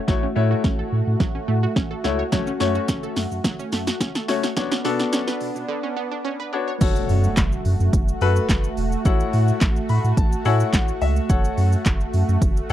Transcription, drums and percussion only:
0.08 kick loud
0.08 snare medium
0.64 kick loud
0.64 snare medium
1.20 kick loud
1.20 snare medium
1.76 kick loud
1.76 snare medium
2.04 snare medium
2.32 kick loud
2.32 snare medium
2.32 closed hi-hat medium
2.32 shaker medium
2.47 shaker medium
2.60 snare medium
2.60 open hi-hat medium
2.60 shaker medium
2.75 shaker medium
2.88 kick loud
2.88 snare medium
2.88 closed hi-hat medium
2.88 shaker medium
3.03 shaker soft
3.16 snare medium
3.16 open hi-hat medium
3.16 shaker medium
3.32 shaker medium
3.44 kick loud
3.44 snare loud
3.44 closed hi-hat medium
3.44 shaker medium
3.59 shaker medium
3.72 snare loud
3.72 open hi-hat medium
3.72 shaker soft
3.87 snare loud
3.87 shaker medium
4.00 kick loud
4.00 snare loud
4.00 closed hi-hat medium
4.00 shaker medium
4.15 snare loud
4.15 shaker medium
4.28 snare loud
4.28 open hi-hat medium
4.28 shaker medium
4.43 snare loud
4.43 shaker medium
4.57 kick loud
4.57 snare loud
4.57 closed hi-hat medium
4.57 shaker medium
4.72 snare loud
4.72 shaker medium
4.85 snare loud
4.85 open hi-hat medium
4.85 shaker medium
4.99 snare loud
4.99 shaker medium
5.13 snare loud
5.13 closed hi-hat medium
5.13 shaker medium
5.28 snare loud
5.28 shaker soft
5.41 open hi-hat medium
5.41 shaker medium
5.56 shaker medium
6.81 kick loud
6.81 closed hi-hat medium
6.81 crash loud
6.81 shaker medium
6.96 shaker medium
7.09 open hi-hat medium
7.09 shaker medium
7.24 shaker medium
7.37 kick loud
7.37 snare loud
7.37 clap loud
7.37 closed hi-hat medium
7.37 shaker medium
7.52 shaker soft
7.65 open hi-hat medium
7.65 shaker medium
7.80 shaker medium
7.93 kick loud
7.93 closed hi-hat medium
7.93 shaker medium
8.08 shaker medium
8.21 open hi-hat medium
8.21 shaker soft
8.36 shaker medium
8.49 kick loud
8.49 snare loud
8.49 clap loud
8.49 closed hi-hat medium
8.49 shaker medium
8.64 shaker medium
8.77 open hi-hat medium
8.77 shaker medium
8.92 shaker medium
9.05 kick loud
9.05 closed hi-hat medium
9.05 shaker medium
9.20 shaker medium
9.33 open hi-hat medium
9.33 shaker medium
9.48 shaker medium
9.61 kick loud
9.61 snare medium
9.61 clap loud
9.61 closed hi-hat medium
9.61 shaker medium
9.76 shaker soft
9.89 open hi-hat medium
9.89 shaker medium
10.05 shaker medium
10.17 kick loud
10.17 closed hi-hat medium
10.17 shaker medium
10.32 shaker medium
10.45 open hi-hat medium
10.45 shaker soft
10.60 shaker medium
10.73 kick loud
10.73 snare loud
10.73 clap loud
10.73 closed hi-hat medium
10.73 shaker medium
10.88 shaker medium
11.02 open hi-hat medium
11.02 shaker medium
11.16 shaker medium
11.29 kick loud
11.29 closed hi-hat medium
11.29 shaker medium
11.45 shaker medium
11.58 open hi-hat medium
11.58 shaker medium
11.72 shaker medium
11.86 kick loud
11.86 snare medium
11.86 clap loud
11.86 closed hi-hat medium
11.86 shaker medium
12.01 shaker soft
12.13 open hi-hat medium
12.13 shaker medium
12.29 shaker medium
12.42 kick loud
12.42 closed hi-hat medium
12.42 shaker medium
12.57 shaker medium
12.70 open hi-hat medium
12.70 shaker soft

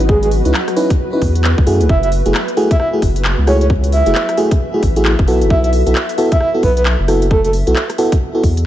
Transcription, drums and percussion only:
0.00 closed hi-hat medium
0.09 kick loud
0.23 closed hi-hat medium
0.31 open hi-hat loud
0.45 closed hi-hat medium
0.54 clap loud
0.68 cross-stick medium
0.68 closed hi-hat soft
0.77 open hi-hat loud
0.90 kick loud
0.90 closed hi-hat medium
1.22 kick medium
1.22 open hi-hat loud
1.35 closed hi-hat medium
1.44 clap loud
1.58 kick loud
1.67 open hi-hat loud
1.81 closed hi-hat medium
1.89 kick loud
2.03 closed hi-hat soft
2.12 open hi-hat loud
2.26 closed hi-hat medium
2.34 clap loud
2.48 closed hi-hat soft
2.57 open hi-hat loud
2.71 kick loud
2.71 closed hi-hat medium
2.80 cross-stick medium
3.02 kick medium
3.02 open hi-hat loud
3.16 closed hi-hat medium
3.25 clap loud
3.47 cross-stick medium
3.47 open hi-hat loud
3.61 closed hi-hat medium
3.70 kick loud
3.84 closed hi-hat soft
3.92 open hi-hat loud
4.06 closed hi-hat medium
4.15 clap loud
4.29 cross-stick medium
4.29 closed hi-hat soft
4.38 open hi-hat loud
4.51 kick loud
4.51 closed hi-hat medium
4.83 kick medium
4.83 open hi-hat loud
4.96 closed hi-hat medium
5.05 clap loud
5.19 kick loud
5.28 open hi-hat loud
5.41 closed hi-hat medium
5.50 kick loud
5.64 closed hi-hat soft
5.73 open hi-hat loud
5.87 closed hi-hat medium
5.95 clap loud
6.09 closed hi-hat medium
6.18 open hi-hat loud
6.32 kick loud
6.32 closed hi-hat medium
6.40 cross-stick medium
6.63 kick medium
6.63 open hi-hat loud
6.77 closed hi-hat medium
6.86 clap loud
7.08 cross-stick medium
7.08 open hi-hat loud
7.22 closed hi-hat medium
7.31 kick loud
7.45 closed hi-hat medium
7.53 open hi-hat loud
7.67 closed hi-hat medium
7.76 clap loud
7.90 cross-stick medium
7.90 closed hi-hat medium
7.98 open hi-hat loud
8.12 kick loud
8.12 closed hi-hat medium
8.44 kick medium
8.44 open hi-hat loud
8.57 closed hi-hat medium

